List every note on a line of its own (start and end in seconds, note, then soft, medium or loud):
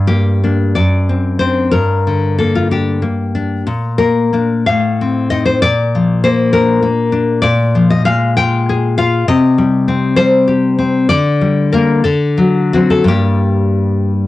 0.00 0.76 G2 medium
0.07 0.42 A#3 medium
0.07 0.75 G4 medium
0.44 0.75 A#3 medium
0.44 0.75 D4 medium
0.75 1.71 F#2 medium
0.75 1.39 D5 loud
1.09 1.40 C4 medium
1.39 1.71 C4 medium
1.39 1.71 D4 medium
1.39 1.71 C5 loud
1.72 3.62 G2 medium
1.72 2.35 A#4 loud
2.07 3.03 D3 medium
2.39 3.01 A#3 medium
2.39 2.55 A4 medium
2.56 2.71 F4 medium
2.71 3.34 D4 medium
2.71 3.63 G4 medium
3.02 3.67 A#3 medium
3.35 3.67 D4 medium
3.67 4.64 A#2 medium
3.98 4.32 A#3 medium
3.98 4.64 A#4 loud
4.33 4.64 A#3 medium
4.33 4.64 D4 medium
4.66 5.60 A2 medium
4.66 5.28 F5 loud
5.01 5.30 C4 medium
5.30 5.59 C4 medium
5.30 5.59 D#4 medium
5.30 5.45 D#5 loud
5.45 5.61 C5 loud
5.62 7.41 A#2 medium
5.62 6.21 D5 loud
5.95 6.84 F3 medium
6.24 6.81 A#3 medium
6.24 6.52 C5 loud
6.53 7.11 D4 medium
6.53 7.41 A#4 loud
6.83 7.44 A#3 medium
7.12 7.44 D4 medium
7.42 9.23 A#2 loud
7.42 7.88 D5 loud
7.75 8.05 F3 medium
7.90 8.05 D#5 loud
8.05 8.97 G#3 medium
8.05 8.35 F5 loud
8.37 8.97 F4 medium
8.37 8.95 G5 loud
8.69 9.28 G#4 medium
8.98 9.28 F4 medium
8.98 9.26 F5 loud
9.28 11.06 C3 loud
9.28 10.14 D#5 loud
9.58 10.16 G3 medium
9.88 10.77 C4 medium
10.16 11.10 G3 medium
10.16 11.06 C5 loud
10.48 11.10 G4 medium
10.79 11.10 C4 medium
11.09 12.04 D3 loud
11.09 11.71 D5 loud
11.42 11.72 G3 medium
11.73 12.03 G3 medium
11.73 12.04 A#3 medium
11.73 12.04 A#4 loud
12.04 13.06 D3 medium
12.04 12.71 A4 loud
12.38 12.73 F#3 medium
12.73 13.07 F#3 medium
12.73 13.07 C4 medium
12.73 12.92 F#4 loud
12.90 13.08 A4 loud
13.04 14.27 G2 medium
13.04 14.27 G3 medium
13.04 14.27 A#3 medium
13.04 14.11 G4 loud